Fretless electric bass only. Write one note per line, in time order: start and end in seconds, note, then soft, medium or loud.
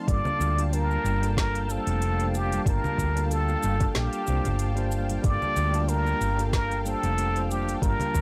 0.08 0.20 G1 medium
0.40 0.96 D2 loud
1.04 1.77 G1 medium
1.87 2.58 F1 medium
2.66 2.77 G1 loud
2.98 3.55 D2 medium
3.64 3.85 G1 medium
3.96 4.07 A#1 medium
4.28 4.39 C2 medium
4.46 5.16 G1 medium
5.24 5.36 G1 loud
5.56 6.13 D2 loud
6.21 6.93 G1 medium
7.03 7.74 F1 medium
7.82 7.94 G1 loud
8.15 8.21 D2 medium